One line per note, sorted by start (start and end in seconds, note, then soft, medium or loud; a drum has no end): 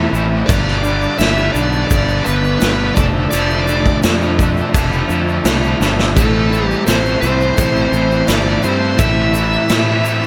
0.00 0.12 A2 medium
0.00 0.12 E3 medium
0.00 0.11 A3 loud
0.00 0.12 C4 loud
0.00 0.11 E4 medium
0.00 0.12 E4 loud
0.00 0.14 A4 loud
0.12 0.42 A1 loud
0.12 0.47 A2 medium
0.12 0.47 E3 medium
0.12 0.49 A3 loud
0.12 0.47 C4 medium
0.12 0.47 E4 medium
0.12 0.50 A4 medium
0.12 shaker medium
0.47 1.06 G1 medium
0.47 0.83 G2 loud
0.47 0.84 D3 medium
0.47 0.84 G3 medium
0.47 0.84 B3 medium
0.47 0.86 D4 loud
0.47 0.85 G4 medium
0.47 1.18 D5 loud
0.47 kick loud
0.47 crash medium
0.47 shaker medium
0.68 snare soft
0.84 1.19 G2 medium
0.84 1.19 D3 medium
0.84 1.20 G3 medium
0.84 1.20 B3 medium
0.84 1.21 D4 medium
0.84 1.21 G4 medium
0.84 shaker medium
1.02 shaker soft
1.18 1.48 G1 medium
1.18 1.53 G2 loud
1.18 1.54 D3 medium
1.18 1.54 G3 loud
1.18 1.54 B3 loud
1.18 1.56 D4 loud
1.18 1.52 E4 medium
1.18 1.55 G4 loud
1.18 1.52 E5 loud
1.18 snare loud
1.18 crash medium
1.18 shaker medium
1.37 shaker soft
1.52 1.83 B1 loud
1.52 1.90 G2 medium
1.52 1.90 D3 medium
1.52 1.90 G3 medium
1.52 1.91 B3 medium
1.52 1.91 D4 medium
1.52 1.86 D5 medium
1.52 shaker medium
1.56 1.91 G4 loud
1.73 shaker soft
1.88 2.19 G1 medium
1.88 2.25 G2 loud
1.88 2.25 D3 loud
1.88 2.26 D5 loud
1.88 kick loud
1.88 crash medium
1.88 shaker loud
1.92 2.26 G3 loud
1.92 2.26 B3 medium
1.92 2.26 D4 loud
1.92 2.27 G4 loud
2.09 shaker soft
2.24 2.55 G1 medium
2.24 2.60 G2 medium
2.24 2.61 D3 medium
2.24 2.61 G3 medium
2.24 2.61 B3 loud
2.24 2.61 D4 loud
2.24 2.62 G4 medium
2.24 2.58 B4 medium
2.24 shaker medium
2.44 shaker soft
2.59 2.91 G1 loud
2.59 2.95 G2 medium
2.59 2.95 D3 medium
2.59 2.95 G3 loud
2.59 2.95 B3 loud
2.59 2.95 D4 loud
2.59 2.96 G4 loud
2.59 2.93 B4 medium
2.59 snare loud
2.59 crash medium
2.59 shaker medium
2.94 3.26 F1 loud
2.94 3.31 D3 loud
2.94 3.30 F3 medium
2.94 3.32 A3 medium
2.94 3.32 D4 medium
2.94 3.33 A4 medium
2.94 3.04 D5 medium
2.94 kick loud
2.94 shaker medium
3.30 3.90 F1 medium
3.30 3.67 D3 loud
3.30 3.66 F3 loud
3.30 3.67 A3 medium
3.30 3.67 D4 medium
3.30 3.67 A4 medium
3.30 3.98 D5 medium
3.30 crash medium
3.30 shaker loud
3.50 shaker soft
3.67 4.01 D3 medium
3.67 4.02 F3 medium
3.67 4.03 A3 medium
3.67 4.03 D4 medium
3.67 4.04 A4 medium
3.67 shaker medium
3.85 kick medium
3.85 shaker soft
4.02 4.61 F2 medium
4.02 4.36 D3 medium
4.02 4.38 F3 medium
4.02 4.38 A3 medium
4.02 4.38 D4 loud
4.02 4.39 A4 loud
4.02 snare loud
4.02 crash medium
4.02 shaker medium
4.22 shaker soft
4.37 4.70 D3 medium
4.37 4.73 F3 medium
4.37 4.73 A3 medium
4.37 4.73 D4 medium
4.37 4.74 A4 medium
4.37 kick medium
4.37 shaker medium
4.57 shaker soft
4.71 5.03 F1 medium
4.71 5.06 D3 medium
4.71 5.07 F3 medium
4.71 5.09 A3 medium
4.71 5.09 D4 medium
4.71 5.10 A4 medium
4.71 kick loud
4.71 crash medium
4.71 shaker medium
4.92 shaker soft
5.07 5.38 F2 medium
5.07 5.44 D3 medium
5.07 5.43 F3 medium
5.07 5.44 A3 medium
5.07 5.44 D4 medium
5.07 5.45 A4 loud
5.07 shaker medium
5.28 shaker soft
5.45 5.73 C2 loud
5.45 5.78 D3 loud
5.45 5.78 F3 medium
5.45 5.80 A3 loud
5.45 5.79 D4 medium
5.45 5.80 A4 loud
5.45 snare loud
5.45 crash medium
5.45 shaker medium
5.64 shaker soft
5.79 6.17 G1 medium
5.79 6.13 D3 medium
5.79 6.13 F3 medium
5.79 6.15 A3 medium
5.79 6.14 D4 medium
5.79 6.16 A4 medium
5.79 snare medium
5.79 shaker medium
5.99 snare medium
5.99 shaker soft
6.15 6.74 A1 medium
6.15 6.50 A2 medium
6.15 6.51 E3 loud
6.15 6.50 A3 loud
6.15 6.66 A3 medium
6.15 6.51 C4 loud
6.15 6.52 E4 medium
6.15 6.66 A4 medium
6.15 6.52 A4 loud
6.15 kick loud
6.15 crash medium
6.15 shaker loud
6.51 6.85 A2 medium
6.51 6.86 E3 medium
6.51 6.86 A3 medium
6.51 6.86 C4 medium
6.51 6.87 E4 medium
6.51 6.87 A4 medium
6.51 shaker medium
6.66 6.83 G3 medium
6.66 6.83 G4 medium
6.71 shaker soft
6.86 7.16 A1 medium
6.86 7.21 A2 medium
6.86 7.21 E3 medium
6.86 7.22 A3 medium
6.86 7.22 C4 loud
6.86 7.22 E4 loud
6.86 7.23 A4 medium
6.86 7.20 C5 loud
6.86 snare loud
6.86 crash medium
6.86 shaker medium
7.06 shaker soft
7.21 7.51 C2 loud
7.21 7.55 A2 medium
7.21 7.55 E3 medium
7.21 7.56 A3 medium
7.21 7.56 C4 medium
7.21 7.56 E4 medium
7.21 7.57 A4 medium
7.21 8.31 C5 medium
7.21 shaker medium
7.41 shaker soft
7.57 7.86 A1 medium
7.57 7.91 A2 medium
7.57 7.91 E3 medium
7.57 7.92 A3 loud
7.57 7.92 C4 loud
7.57 7.92 E4 loud
7.57 7.93 A4 loud
7.57 kick loud
7.57 crash medium
7.57 shaker medium
7.76 shaker soft
7.92 8.21 A1 loud
7.92 8.26 A2 medium
7.92 8.27 E3 loud
7.92 8.29 A3 loud
7.92 8.27 C4 medium
7.92 8.28 E4 medium
7.92 8.29 A4 loud
7.92 shaker medium
8.11 shaker soft
8.27 8.57 G1 loud
8.27 8.62 A2 medium
8.27 8.62 E3 medium
8.27 8.64 A3 loud
8.27 8.63 C4 medium
8.27 8.60 D4 medium
8.27 8.63 E4 loud
8.27 8.65 A4 medium
8.27 8.61 D5 medium
8.27 snare loud
8.27 crash medium
8.27 shaker loud
8.63 8.92 G2 loud
8.63 8.97 A2 medium
8.63 8.98 E3 medium
8.63 8.98 A3 loud
8.63 8.98 C4 medium
8.63 8.99 E4 medium
8.63 8.99 A4 medium
8.63 9.00 C5 medium
8.63 shaker medium
8.98 9.56 A1 medium
8.98 9.33 A2 medium
8.98 9.34 E3 medium
8.98 9.33 A3 loud
8.98 9.34 C4 loud
8.98 9.34 E4 loud
8.98 9.35 A4 loud
8.98 9.31 E5 loud
8.98 kick loud
8.98 crash medium
8.98 shaker medium
9.34 9.67 A2 medium
9.34 9.68 E3 medium
9.34 9.69 A3 loud
9.34 9.68 C4 medium
9.34 9.68 E4 loud
9.34 9.69 A4 medium
9.34 10.27 E5 loud
9.34 shaker medium
9.52 shaker soft
9.69 10.03 A2 medium
9.69 10.27 A2 medium
9.69 10.03 E3 medium
9.69 10.04 A3 loud
9.69 10.04 C4 loud
9.69 10.04 E4 loud
9.69 10.05 A4 loud
9.69 snare loud
9.69 crash medium
9.69 shaker medium
10.04 10.27 A2 medium
10.04 10.27 E3 medium
10.04 10.27 A3 medium
10.04 10.27 C4 medium
10.04 10.27 E4 medium
10.04 10.27 A4 loud
10.04 shaker medium
10.23 shaker soft